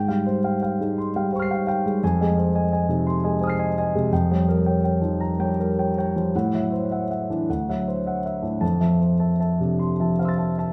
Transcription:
Already playing: G#2
0.08 G3 F5 G5
0.26 C5
0.44 F5 G5
0.62 F5 G5
0.81 G#3 D#4
0.98 C6
1.16 G3 F5 G5
1.33 C5 G5 C#6
1.39 F6 C7
1.51 F5 G5
1.67 F5 G5
1.86 G3 G#3
2.03 F2 G#5
2.21 G#3 D#5 G#5
2.38 C5
2.55 D#5 G#5
2.72 D#5 G#5
2.89 C3 D#4
3.07 C6
3.24 G#3 D#5 G#5
3.41 C5 G#5 D#6
3.47 F6 C7
3.59 D#5 G#5
3.78 D#5 G#5
3.95 C3 G#3
4.12 F2 G5
4.31 G3 C#5 G5
4.49 A#4
4.66 C#5 G5
4.83 C#5 G5
5.01 F3 D#4
5.20 A#5
5.39 G3 C#5 G5
5.60 A#4
5.79 C#5 G5
5.98 C#5 G5
6.16 F3 G3
6.35 A2 F#5
6.54 F#3 E5 F#5
6.72 C5
6.91 E5 F#5
7.10 E5 F#5
7.30 E3 D4
7.50 D2 F#5
7.69 F#3 E5 F#5
7.88 C5
8.06 E5 F#5
8.26 E5 F#5
8.42 A2 D4
8.61 F2 A5
8.81 F3 E5 A5
9.01 C5
9.20 E5 A5
9.40 E5 A5
9.60 C3 D4
9.79 C6
10.00 F3 E5 A5
10.19 C5 F5 C6
10.25 E6 A6
10.38 E5 A5
10.58 E5 A5

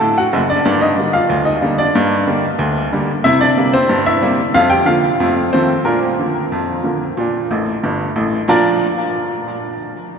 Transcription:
Already playing: A4 A5
0.01 A2
0.18 F#4 F#5
0.33 F#1 F#2
0.50 D4 D5
0.65 G2 A#3 D4 D5
0.81 D#4 D#5
0.97 D3 G3 A#3
1.13 F4 F5
1.29 D2
1.45 D#4 D#5
1.62 D3 G3 A#3
1.78 D4 D5
1.95 G2 A#3
2.27 D3 G3 A#3
2.59 D2
2.93 D3 G3 A#3
3.24 C3 E4 E5
3.41 D4 D5
3.57 C3 G3 A#3
3.73 C4 C5
3.89 G2
4.06 E4 E5
4.22 C3 G3 A#3
4.54 F2 F4 F5
4.70 G4 G5
4.86 D3 F3 A#3 F4 F5
5.20 F2 A3
5.53 D#3 F3 A3 C4 C5
5.85 A#2 A#3 D4 A#4
6.19 D3 F3 A#3
6.52 F2
6.84 D3 F3 A#3
7.17 A#2 D4
7.51 A1 A2
7.83 G1 G2
8.16 A1 A2
8.48 A#2 F3 D4 F4 A#4 D5

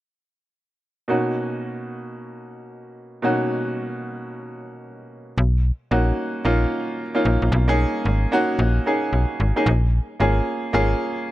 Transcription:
1.08 B2 A#3 C#4 D#4 F#4
3.22 B2 A#3 C#4 D#4 F#4
5.38 B1
5.91 A#1 A#3 C#4 D#4 F#4
6.45 A#1 A#3 C#4 D#4 F4
7.15 A#3 C#4 D#4 F4
7.25 A#1
7.42 A#1
7.52 B1
7.68 A#3 C#4 D#4 G#4
8.05 G#1
8.32 A#3 C#4 D#4 F#4
8.59 A#1
8.86 A#3 C#4 D#4 G#4
9.13 B1
9.40 G#1
9.56 A#3 C#4 D#4 G#4
9.66 A#1
10.20 G#1 A#3 C#4 F4 G#4
10.73 G#1 A#3 C#4 F4 G#4

